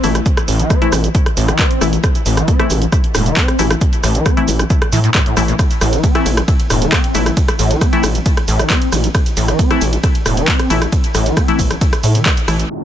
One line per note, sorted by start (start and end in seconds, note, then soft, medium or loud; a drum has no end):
0.04 0.20 A1 medium
0.04 0.17 A2 medium
0.04 0.23 E3 medium
0.04 0.23 A3 medium
0.04 0.23 E4 medium
0.04 open hi-hat loud
0.04 shaker medium
0.15 0.19 C4 medium
0.15 cross-stick medium
0.15 closed hi-hat medium
0.15 shaker soft
0.26 kick loud
0.26 closed hi-hat loud
0.26 shaker soft
0.37 cross-stick medium
0.37 closed hi-hat medium
0.37 shaker soft
0.48 0.64 A1 medium
0.48 0.61 A2 medium
0.48 open hi-hat loud
0.48 shaker medium
0.59 0.72 E3 loud
0.59 closed hi-hat medium
0.59 shaker soft
0.70 0.94 C4 medium
0.70 kick loud
0.70 cross-stick medium
0.70 closed hi-hat medium
0.70 shaker soft
0.82 0.94 E3 medium
0.82 0.94 A3 medium
0.82 0.94 E4 loud
0.82 closed hi-hat medium
0.92 1.09 A1 medium
0.92 1.05 A2 medium
0.92 cross-stick medium
0.92 open hi-hat loud
0.92 shaker medium
1.04 1.07 C4 medium
1.04 closed hi-hat medium
1.04 shaker soft
1.15 kick loud
1.15 closed hi-hat medium
1.15 shaker soft
1.26 cross-stick medium
1.26 closed hi-hat medium
1.37 1.53 A1 loud
1.37 1.50 A2 medium
1.37 open hi-hat loud
1.37 shaker medium
1.48 1.61 E3 loud
1.48 cross-stick loud
1.48 closed hi-hat medium
1.48 shaker soft
1.59 1.83 C4 medium
1.59 kick loud
1.59 clap loud
1.59 closed hi-hat loud
1.59 shaker soft
1.71 closed hi-hat medium
1.81 1.98 A1 medium
1.81 1.94 A2 medium
1.81 2.01 E3 medium
1.81 2.01 A3 medium
1.81 2.01 E4 medium
1.81 cross-stick medium
1.81 open hi-hat medium
1.81 shaker medium
1.93 1.96 C4 medium
1.93 closed hi-hat medium
1.93 shaker soft
2.04 kick loud
2.04 cross-stick loud
2.04 closed hi-hat loud
2.04 shaker soft
2.15 closed hi-hat medium
2.15 shaker soft
2.26 2.42 A1 loud
2.26 2.39 A2 medium
2.26 open hi-hat loud
2.26 shaker medium
2.37 2.49 E3 loud
2.37 cross-stick medium
2.37 closed hi-hat medium
2.37 shaker soft
2.48 2.72 C4 medium
2.48 kick loud
2.48 closed hi-hat medium
2.48 shaker soft
2.59 2.71 E3 medium
2.59 2.71 A3 medium
2.59 2.71 E4 loud
2.59 cross-stick medium
2.59 closed hi-hat medium
2.70 2.86 A1 medium
2.70 2.83 A2 medium
2.70 open hi-hat loud
2.70 shaker medium
2.82 2.85 C4 medium
2.82 closed hi-hat medium
2.82 shaker soft
2.92 kick loud
2.92 cross-stick medium
2.92 closed hi-hat medium
2.92 shaker soft
3.04 closed hi-hat medium
3.15 3.31 E1 medium
3.15 3.28 A2 medium
3.15 cross-stick loud
3.15 open hi-hat loud
3.15 shaker medium
3.26 3.38 E3 loud
3.26 closed hi-hat medium
3.26 shaker soft
3.37 3.61 C4 medium
3.37 kick loud
3.37 clap loud
3.37 closed hi-hat medium
3.37 shaker soft
3.48 cross-stick medium
3.48 closed hi-hat medium
3.59 3.75 A1 medium
3.59 3.72 A2 medium
3.59 3.79 E3 medium
3.59 3.79 A3 medium
3.59 3.79 E4 medium
3.59 open hi-hat loud
3.59 shaker medium
3.71 3.74 C4 medium
3.71 cross-stick loud
3.71 closed hi-hat medium
3.71 shaker soft
3.81 kick loud
3.81 closed hi-hat medium
3.81 shaker soft
3.93 closed hi-hat medium
3.93 shaker soft
4.03 4.20 A1 medium
4.03 4.17 A2 medium
4.03 cross-stick medium
4.03 open hi-hat loud
4.03 shaker medium
4.15 4.27 E3 loud
4.15 closed hi-hat medium
4.15 shaker soft
4.26 4.49 C4 medium
4.26 kick loud
4.26 cross-stick loud
4.26 closed hi-hat medium
4.26 shaker soft
4.37 4.49 E3 loud
4.37 4.49 A3 medium
4.37 4.49 E4 loud
4.37 closed hi-hat medium
4.48 4.64 A1 medium
4.48 4.61 A2 medium
4.48 open hi-hat loud
4.48 shaker medium
4.59 4.63 C4 medium
4.59 cross-stick medium
4.59 closed hi-hat medium
4.59 shaker soft
4.70 kick loud
4.70 closed hi-hat medium
4.70 shaker soft
4.82 cross-stick loud
4.82 closed hi-hat medium
4.92 5.09 A2 loud
4.92 4.99 E3 loud
4.92 open hi-hat loud
4.92 shaker medium
5.04 5.10 A2 loud
5.04 closed hi-hat medium
5.04 shaker soft
5.15 5.21 A2 loud
5.15 kick loud
5.15 cross-stick medium
5.15 clap loud
5.15 closed hi-hat medium
5.15 shaker soft
5.26 5.35 A2 medium
5.26 closed hi-hat medium
5.37 5.53 A1 loud
5.37 5.43 A2 medium
5.37 5.57 E3 medium
5.37 5.57 A3 medium
5.37 5.57 E4 medium
5.37 cross-stick medium
5.37 open hi-hat loud
5.37 shaker medium
5.48 5.54 A#2 loud
5.48 closed hi-hat medium
5.48 shaker soft
5.59 kick loud
5.59 cross-stick medium
5.59 closed hi-hat medium
5.59 ride medium
5.59 shaker soft
5.71 closed hi-hat medium
5.71 ride medium
5.71 shaker soft
5.81 5.98 A1 loud
5.81 5.94 A2 medium
5.81 cross-stick loud
5.81 open hi-hat loud
5.81 ride medium
5.81 shaker medium
5.93 6.05 E3 loud
5.93 closed hi-hat medium
5.93 ride medium
5.93 shaker soft
6.04 6.27 C4 medium
6.04 kick loud
6.04 closed hi-hat medium
6.04 ride medium
6.04 shaker soft
6.15 6.27 E3 medium
6.15 6.27 A3 medium
6.15 6.27 E4 loud
6.15 cross-stick medium
6.15 closed hi-hat soft
6.15 ride medium
6.26 6.42 A1 medium
6.26 6.39 A2 medium
6.26 open hi-hat loud
6.26 ride medium
6.26 shaker medium
6.37 6.41 C4 medium
6.37 cross-stick medium
6.37 closed hi-hat medium
6.37 ride medium
6.37 shaker soft
6.48 kick loud
6.48 closed hi-hat medium
6.48 ride medium
6.48 shaker soft
6.60 closed hi-hat medium
6.60 ride medium
6.70 6.87 E1 medium
6.70 6.83 A2 medium
6.70 cross-stick medium
6.70 open hi-hat loud
6.70 ride medium
6.70 shaker medium
6.82 6.94 E3 loud
6.82 closed hi-hat medium
6.82 ride medium
6.82 shaker soft
6.92 7.16 C4 medium
6.92 kick loud
6.92 cross-stick loud
6.92 clap loud
6.92 closed hi-hat medium
6.92 ride medium
6.92 shaker soft
7.04 closed hi-hat medium
7.04 ride medium
7.15 7.31 A1 medium
7.15 7.28 A2 medium
7.15 7.34 E3 medium
7.15 7.34 A3 medium
7.15 7.34 E4 medium
7.15 open hi-hat loud
7.15 ride medium
7.15 shaker medium
7.26 7.30 C4 medium
7.26 cross-stick medium
7.26 closed hi-hat soft
7.26 ride medium
7.26 shaker soft
7.37 kick loud
7.37 closed hi-hat medium
7.37 ride medium
7.37 shaker soft
7.48 cross-stick medium
7.48 closed hi-hat medium
7.48 ride medium
7.48 shaker soft
7.59 7.75 A1 medium
7.59 7.72 A2 medium
7.59 open hi-hat loud
7.59 ride medium
7.59 shaker medium
7.70 7.83 E3 loud
7.70 closed hi-hat medium
7.70 ride medium
7.70 shaker soft
7.81 8.05 C4 medium
7.81 kick loud
7.81 cross-stick medium
7.81 closed hi-hat medium
7.81 ride medium
7.81 shaker soft
7.93 8.05 E3 medium
7.93 8.05 A3 medium
7.93 8.05 E4 loud
7.93 closed hi-hat soft
7.93 ride medium
8.03 8.20 A1 medium
8.03 8.17 A2 medium
8.03 cross-stick medium
8.03 open hi-hat medium
8.03 ride medium
8.03 shaker medium
8.15 8.19 C4 medium
8.15 closed hi-hat medium
8.15 ride medium
8.15 shaker soft
8.26 kick loud
8.26 closed hi-hat medium
8.26 ride medium
8.26 shaker soft
8.37 cross-stick medium
8.37 closed hi-hat medium
8.37 ride medium
8.48 8.64 A1 loud
8.48 8.61 A2 medium
8.48 open hi-hat loud
8.48 ride medium
8.48 shaker medium
8.59 8.72 E3 loud
8.59 cross-stick medium
8.59 closed hi-hat medium
8.59 ride medium
8.59 shaker soft
8.70 8.94 C4 medium
8.70 kick loud
8.70 clap loud
8.70 closed hi-hat medium
8.70 ride medium
8.70 shaker soft
8.82 closed hi-hat medium
8.82 ride medium
8.92 9.09 A1 medium
8.92 9.05 A2 medium
8.92 cross-stick medium
8.92 open hi-hat medium
8.92 ride medium
8.92 shaker medium
9.04 9.07 C4 medium
9.04 closed hi-hat medium
9.04 ride medium
9.04 shaker soft
9.15 kick loud
9.15 cross-stick medium
9.15 closed hi-hat medium
9.15 ride medium
9.15 shaker soft
9.26 closed hi-hat medium
9.26 ride medium
9.26 shaker soft
9.37 9.53 A1 loud
9.37 9.50 A2 medium
9.37 open hi-hat loud
9.37 ride medium
9.37 shaker medium
9.48 9.61 E3 loud
9.48 cross-stick medium
9.48 closed hi-hat medium
9.48 ride medium
9.48 shaker soft
9.59 9.83 C4 medium
9.59 kick loud
9.59 closed hi-hat medium
9.59 ride medium
9.59 shaker soft
9.71 9.82 E3 loud
9.71 9.82 A3 medium
9.71 9.82 E4 loud
9.71 cross-stick medium
9.71 closed hi-hat medium
9.71 ride medium
9.81 9.98 A1 medium
9.81 9.94 A2 medium
9.81 open hi-hat medium
9.81 ride medium
9.81 shaker medium
9.93 9.96 C4 medium
9.93 closed hi-hat medium
9.93 ride medium
9.93 shaker soft
10.03 kick loud
10.03 cross-stick medium
10.03 closed hi-hat medium
10.03 ride medium
10.03 shaker soft
10.15 closed hi-hat medium
10.15 ride medium
10.26 10.42 E1 medium
10.26 10.39 A2 medium
10.26 cross-stick medium
10.26 open hi-hat loud
10.26 ride medium
10.26 shaker medium
10.37 10.49 E3 loud
10.37 closed hi-hat medium
10.37 ride medium
10.37 shaker soft
10.48 10.72 C4 medium
10.48 kick loud
10.48 clap loud
10.48 closed hi-hat medium
10.48 ride medium
10.48 shaker soft
10.59 cross-stick medium
10.59 closed hi-hat medium
10.59 ride medium
10.70 10.86 A1 medium
10.70 10.83 A2 medium
10.70 10.90 E3 medium
10.70 10.90 A3 medium
10.70 10.90 E4 medium
10.70 open hi-hat medium
10.70 ride medium
10.70 shaker medium
10.82 10.85 C4 medium
10.82 cross-stick medium
10.82 closed hi-hat medium
10.82 ride medium
10.82 shaker soft
10.92 kick loud
10.92 closed hi-hat loud
10.92 ride medium
10.92 shaker soft
11.04 closed hi-hat medium
11.04 ride medium
11.04 shaker soft
11.15 11.31 A1 medium
11.15 11.28 A2 medium
11.15 cross-stick medium
11.15 open hi-hat loud
11.15 ride medium
11.15 shaker medium
11.26 11.38 E3 loud
11.26 closed hi-hat medium
11.26 ride medium
11.26 shaker soft
11.37 11.61 C4 medium
11.37 kick loud
11.37 cross-stick medium
11.37 closed hi-hat medium
11.37 ride medium
11.37 shaker soft
11.48 11.60 E3 medium
11.48 11.60 A3 medium
11.48 11.60 E4 loud
11.48 closed hi-hat medium
11.48 ride medium
11.59 11.75 A1 medium
11.59 11.72 A2 medium
11.59 kick medium
11.59 open hi-hat loud
11.59 ride medium
11.59 shaker medium
11.70 11.74 C4 medium
11.70 cross-stick medium
11.70 closed hi-hat medium
11.70 ride medium
11.70 shaker soft
11.81 kick loud
11.81 closed hi-hat medium
11.81 ride medium
11.81 shaker soft
11.93 cross-stick medium
11.93 closed hi-hat medium
11.93 ride medium
11.93 shaker soft
12.03 12.16 A2 medium
12.03 12.20 A2 loud
12.03 open hi-hat loud
12.03 ride medium
12.03 shaker medium
12.15 12.27 E3 loud
12.15 closed hi-hat medium
12.15 ride medium
12.15 shaker soft
12.26 12.49 C4 medium
12.26 kick loud
12.26 cross-stick medium
12.26 clap loud
12.26 closed hi-hat medium
12.26 ride medium
12.26 shaker soft
12.37 closed hi-hat medium
12.37 ride medium
12.37 shaker soft
12.48 12.64 A1 loud
12.48 12.61 A2 medium
12.48 12.68 E3 medium
12.48 12.68 A3 medium
12.48 12.68 E4 medium
12.48 cross-stick medium
12.48 open hi-hat medium
12.48 ride medium
12.48 shaker medium
12.59 12.63 C4 medium
12.59 closed hi-hat medium
12.59 ride medium
12.59 shaker soft
12.70 12.84 A2 medium
12.70 downlifter medium